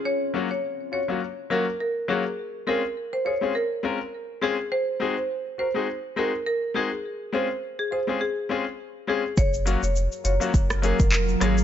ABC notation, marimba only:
X:1
M:4/4
L:1/16
Q:"Swing 16ths" 1/4=103
K:Db
V:1 name="Marimba"
d z2 d z2 d z3 B z B z A z | z2 B z2 c d z B3 z3 A z | c z2 c z2 c z3 B z B z A z | z2 c z2 A c z A3 z3 A z |
d z2 d z2 d z3 B z B z A z |]